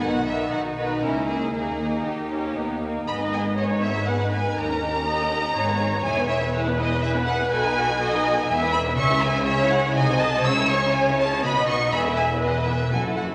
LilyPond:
<<
  \new Staff \with { instrumentName = "Violin section" } { \time 3/4 \key gis \minor \tempo 4 = 122 fis''8 e''8 fis''8 b'8 ais'8 gis'8 | gis'4 g'4. r8 | b''8 gis''8 dis''8 e''8 fis''8 gis''8 | ais''2. |
gis''8 e''8 cis''8 dis''8 e''8 fis''8 | gis''2~ gis''8 b''8 | \key cis \minor cis'''8 gis''8 e''8 fis''8 gis''8 a''8 | e'''8 cis'''8 gis''8 a''8 b''8 cis'''8 |
b''8 gis''8 dis''8 e''8 gis''8 fis''8 | }
  \new Staff \with { instrumentName = "Viola section" } { \time 3/4 \key gis \minor <dis b>8 <dis b>4 <dis b>8 ais8 ais8 | ais8 ais8 dis'8 cis'8 b8 ais8 | dis''4 cis''4 b'4 | ais'4 dis''4 cis''4~ |
cis''4 b'2~ | b'4 dis''4 e''4 | \key cis \minor e''4 cis''4 dis''4 | cis''2 dis''4 |
e''4 b'4 a'4 | }
  \new Staff \with { instrumentName = "Violin section" } { \time 3/4 \key gis \minor <dis' fis'>8 <dis' fis'>4 <dis' fis'>8 <cis' e'>8 <cis' e'>8 | <ais dis'>8 <ais dis'>4 <ais dis'>4 <ais dis'>8 | <b gis'>16 <dis' b'>16 <b gis'>16 <dis' b'>16 <b gis'>16 <dis' b'>16 <b gis'>16 <dis' b'>16 <b gis'>16 <dis' b'>16 <b gis'>16 <dis' b'>16 | <dis' g'>16 <cis' ais'>16 <dis' g'>16 <cis' ais'>16 <dis' g'>16 <cis' ais'>16 <dis' g'>16 <cis' ais'>16 <dis' gis'>16 <b b'>16 <dis' gis'>16 <b b'>16 |
<e' gis'>16 <b b'>16 <e' gis'>16 <b b'>16 <e' gis'>16 <b b'>16 <e' gis'>16 <b b'>16 <e' gis'>16 <b b'>16 <e' gis'>16 <b b'>16 | <fis' a'>16 <dis' b'>16 <fis' a'>16 <dis' b'>16 <fis' a'>16 <dis' b'>16 <fis' a'>16 <dis' b'>16 <b gis'>16 <e' b'>16 <b gis'>16 <e' b'>16 | \key cis \minor <cis' gis'>16 <e' cis''>16 <cis' gis'>16 <e' cis''>16 <cis' gis'>16 <e' cis''>16 <cis' gis'>16 <e' cis''>16 <dis' gis'>16 <fis' bis'>16 <dis' gis'>16 <fis' bis'>16 | <cis' gis'>16 <e' cis''>16 <cis' gis'>16 <e' cis''>16 <cis' gis'>16 <e' cis''>16 <cis' gis'>16 <e' cis''>16 <fis' b'>16 <dis' dis''>16 <fis' b'>16 <dis' dis''>16 |
<b gis'>16 <e' b'>16 <b gis'>16 <e' b'>16 <b gis'>16 <e' b'>16 <b gis'>16 <e' b'>16 <fis' a'>16 <e' fis'>16 <fis' a'>16 <e' fis'>16 | }
  \new Staff \with { instrumentName = "Cello section" } { \clef bass \time 3/4 \key gis \minor b4 dis'2 | dis'2~ dis'8 r8 | gis,2. | dis,2 gis,4 |
e,2. | b,2 e,4 | \key cis \minor cis2 bis,4 | cis2 b,4 |
e,2 fis,4 | }
  \new Staff \with { instrumentName = "Double bass section" } { \clef bass \time 3/4 \key gis \minor b,,4 b,,4 cis,4 | dis,4 dis,4 dis,4 | gis,,2. | dis,2 gis,,4 |
e,,2. | b,,2 e,,4 | \key cis \minor cis,2 bis,,4 | cis,2 b,,4 |
e,,2 fis,,4 | }
>>